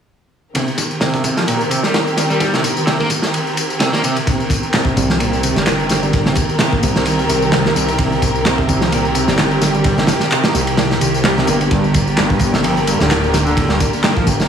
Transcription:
0.54 overdriven electric guitar C3, string section D#3 C4 G4 A#4, kick, ride, tambourine
0.68 tambourine
0.78 kick, ride, tambourine
0.91 tambourine
1.01 overdriven electric guitar C3, snare, ride, tambourine
1.14 kick, tambourine
1.24 overdriven electric guitar C3, kick, ride, tambourine
1.37 overdriven electric guitar F3, snare, tambourine
1.47 overdriven electric guitar A#2, ride, tambourine
1.61 tambourine
1.71 overdriven electric guitar C3, ride, tambourine
1.83 overdriven electric guitar G3, snare, tambourine
1.94 snare, ride, tambourine
2.07 tambourine
2.17 snare, ride, tambourine
2.30 overdriven electric guitar G3, tambourine
2.40 kick, ride, tambourine
2.53 overdriven electric guitar C3, snare, tambourine
2.64 kick, ride, tambourine
2.77 tambourine
2.87 overdriven electric guitar C3, snare, ride, tambourine
3.00 overdriven electric guitar A#3, kick, tambourine
3.10 kick, ride, tambourine
3.22 snare, tambourine
3.34 ride, tambourine
3.47 tambourine
3.57 ride, tambourine
3.70 tambourine
3.80 overdriven electric guitar C3, snare, ride, tambourine
3.93 overdriven electric guitar A#3, snare, tambourine
4.04 overdriven electric guitar C3, ride, tambourine
4.16 ride, tambourine
4.27 overdriven electric guitar C3, string section D#3 C4 G4 A#4, kick, ride, tambourine
4.40 tambourine
4.50 kick, ride, tambourine
4.63 tambourine
4.73 overdriven electric guitar C3, snare, clap, ride, tambourine
4.85 kick, tambourine
4.97 analog synth bass C2, overdriven electric guitar C3, kick, ride, tambourine
5.09 overdriven electric guitar F3, snare, tambourine
5.20 overdriven electric guitar A#2, ride, tambourine
5.33 tambourine
5.43 overdriven electric guitar C3, ride, tambourine
5.56 analog synth bass G1, overdriven electric guitar G3, snare, tambourine
5.66 snare, clap, ride, tambourine
5.80 tambourine
5.89 snare, ride, tambourine
6.03 overdriven electric guitar G3, tambourine
6.13 kick, ride, tambourine
6.26 overdriven electric guitar C3, snare, tambourine
6.35 kick, ride, tambourine
6.49 tambourine
6.59 overdriven electric guitar C3, snare, clap, ride, tambourine
6.72 overdriven electric guitar A#3, kick, tambourine
6.83 analog synth bass C2, kick, ride, tambourine
6.96 snare, tambourine
7.05 ride, tambourine
7.19 tambourine
7.29 analog synth bass C2, ride, tambourine
7.42 tambourine
7.52 overdriven electric guitar C3, snare, clap, ride, tambourine
7.65 overdriven electric guitar A#3, snare, tambourine
7.75 analog synth bass C2, overdriven electric guitar C3, ride, tambourine
7.88 ride, tambourine
7.98 overdriven electric guitar C3, kick, ride, tambourine
8.12 tambourine
8.22 kick, ride, tambourine
8.36 tambourine
8.45 overdriven electric guitar C3, snare, clap, ride, tambourine
8.58 kick, tambourine
8.69 analog synth bass C2, overdriven electric guitar C3, kick, ride, tambourine
8.81 overdriven electric guitar F3, snare, tambourine
8.92 overdriven electric guitar A#2, ride, tambourine
9.05 tambourine
9.15 overdriven electric guitar C3, ride, tambourine
9.28 analog synth bass G1, overdriven electric guitar G3, snare, tambourine
9.38 snare, clap, ride, tambourine
9.51 tambourine
9.62 snare, ride, tambourine
9.74 overdriven electric guitar G3, tambourine
9.84 kick, ride, tambourine
9.98 overdriven electric guitar C3, snare, tambourine
10.07 snare, ride, tambourine
10.20 snare, tambourine
10.31 overdriven electric guitar C3, clap, ride, tambourine
10.44 overdriven electric guitar A#3, snare, ride, tambourine
10.54 analog synth bass C2, snare, tambourine
10.67 ride, tambourine
10.77 snare, ride, tambourine
10.91 snare, tambourine
11.01 analog synth bass C2, ride, tambourine
11.14 tambourine
11.24 overdriven electric guitar G3, snare, clap, ride, tambourine
11.37 overdriven electric guitar C3, snare, tambourine
11.47 analog synth bass G1, overdriven electric guitar A#3, ride, tambourine
11.61 ride, tambourine
11.71 overdriven electric guitar G2, string section D3 A#3 A#4, kick, ride, tambourine
11.84 tambourine
11.94 kick, ride, tambourine
12.07 tambourine
12.17 overdriven electric guitar G2, snare, clap, ride, tambourine
12.30 kick, tambourine
12.39 analog synth bass G1, overdriven electric guitar G2, kick, ride, tambourine
12.54 overdriven electric guitar C3, snare, tambourine
12.64 overdriven electric guitar F2, ride, tambourine
12.77 tambourine
12.87 overdriven electric guitar G2, ride, tambourine
13.00 analog synth bass D1, overdriven electric guitar D3, snare, tambourine
13.11 snare, clap, ride, tambourine
13.23 tambourine
13.34 snare, ride, tambourine
13.46 overdriven electric guitar D3, tambourine
13.57 kick, ride, tambourine
13.69 overdriven electric guitar G2, snare, tambourine
13.80 kick, ride, tambourine
13.93 tambourine
14.04 overdriven electric guitar G2, snare, clap, ride, tambourine
14.16 overdriven electric guitar F3, kick, tambourine
14.27 analog synth bass G1, kick, ride, tambourine
14.40 snare, tambourine

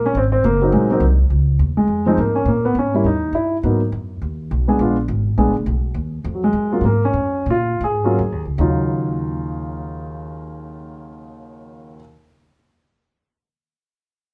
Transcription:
Already playing: upright bass A#1
0.06 grand piano C#4
0.15 upright bass G#1, grand piano C4
0.32 grand piano C4
0.44 upright bass F#1, grand piano A#3
0.61 grand piano F#3 A#3 C4 D#4
0.72 upright bass A#1, grand piano G#3
0.91 grand piano F#3 A#3 C4 D#4
1.00 upright bass C2
1.30 upright bass C#2
1.59 upright bass D#2
1.77 grand piano G#3, muted upright bass stroke
1.88 upright bass F2
2.06 grand piano F3 G#3 C4 D#4
2.17 upright bass G#2, grand piano A#3
2.35 grand piano C#4
2.45 upright bass A#2, grand piano A#3
2.65 grand piano B3
2.75 upright bass G#2, grand piano C#4
2.94 grand piano G3 A#3 C#4 E4
3.04 upright bass D#2, grand piano D#4
3.33 upright bass G2, grand piano E4
3.63 upright bass G#2, grand piano F#3 A#3 B3 D#4
3.92 upright bass F#2
4.22 upright bass D#2
4.51 upright bass B1
4.68 grand piano G#3 B3 D4 G#4
4.79 upright bass A#1, grand piano G#3 B3 D4 F4
5.08 upright bass G#1
5.38 upright bass A#1, grand piano G#3 B3 D4 G#4
5.48 upright bass G#1
5.56 upright bass F1
5.66 upright bass B1
5.94 upright bass D#2
6.24 upright bass F2
6.34 grand piano F#3
6.44 grand piano G#3
6.53 upright bass F#2
6.72 grand piano F#3 A#3 C#4 F4
6.81 upright bass G#2
6.85 grand piano A#3
7.05 grand piano C#4
7.13 upright bass F#2
7.46 upright bass A#2
7.50 grand piano F4
7.80 upright bass G#2, grand piano G#4
8.04 grand piano F#3 A#3 C#4 F4
8.19 upright bass F#2
8.32 upright bass D#2
8.45 upright bass C#2
8.58 grand piano D#2 C#3 F#3 D#4 F4, upright bass D#2

